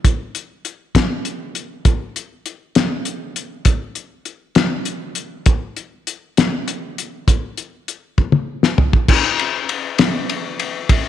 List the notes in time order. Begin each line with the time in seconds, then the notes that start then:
0.05 kick, closed hi-hat
0.35 closed hi-hat
0.65 closed hi-hat
0.95 kick, snare, closed hi-hat
1.25 closed hi-hat
1.55 closed hi-hat
1.85 kick, closed hi-hat
2.16 closed hi-hat
2.46 closed hi-hat
2.75 snare, closed hi-hat
3.05 closed hi-hat
3.36 closed hi-hat
3.65 kick, closed hi-hat
3.95 closed hi-hat
4.25 closed hi-hat
4.55 snare, closed hi-hat
4.85 closed hi-hat
5.15 closed hi-hat
5.46 kick, closed hi-hat
5.77 closed hi-hat
6.07 closed hi-hat
6.37 snare, closed hi-hat
6.68 closed hi-hat
6.98 closed hi-hat
7.28 kick, closed hi-hat
7.58 closed hi-hat
7.88 closed hi-hat
8.18 kick
8.32 high tom
8.63 snare
8.78 floor tom
8.93 kick
9.08 kick, crash
9.39 ride
9.69 ride
9.98 snare, ride
10.29 ride
10.59 ride
10.89 kick, ride